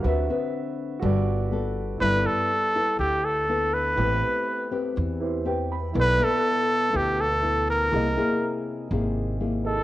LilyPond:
<<
  \new Staff \with { instrumentName = "Grand piano" } { \time 4/4 \key g \major \tempo 4 = 122 << { r1 | r1 | r2. g''8 b''8 | r1 |
r1 | } \\ { <fis' b' e''>2 <fis' a' b' d''>2 | <e' a' d''>1 | <e' g' b'>2~ <e' g' b'>8 <e' g' b' c''>4. | <e' a' b' d''>1 |
<e' gis' bes' dis''>2.~ <e' gis' bes' dis''>8 <e' gis' bes' dis''>8 | } >> }
  \new Staff \with { instrumentName = "Trumpet" } { \time 4/4 \key g \major r1 | b'8 a'4. g'8 a'4 b'8~ | b'4. r2 r8 | b'8 a'4. g'8 a'4 bes'8~ |
bes'4. r2 a'8 | }
  \new Staff \with { instrumentName = "Nylon-string guitar" } { \time 4/4 \key g \major << { <c' fis' b'>8 <c' fis' b'>4. <b fis' a'>4 <b fis' a'>4 | <b e' a'>4 r8 <b e' a'>4. <b e' a'>4 | <c' g' b'>4. <c' g' b'>4. <c' g' b'>8 r8 | <b e' a'>8 <b e' a'>4. <b e' a'>8 r8 <b e' a'>4 |
<bes e' gis'>8 <bes e' gis'>4. <bes e' gis'>4 <bes e' gis'>8 r8 | } \\ { d2 g2 | g2 d2 | a2 e2 | b,2 b,2 |
c2 c2 | } >> }
  \new Staff \with { instrumentName = "Upright bass" } { \clef bass \time 4/4 \key g \major d,8 r4. g,,2 | g,,8 r4. d,2 | a,,8 r4. e,2 | b,,8 r4. d,2 |
c,8 r4. gis,,2 | }
>>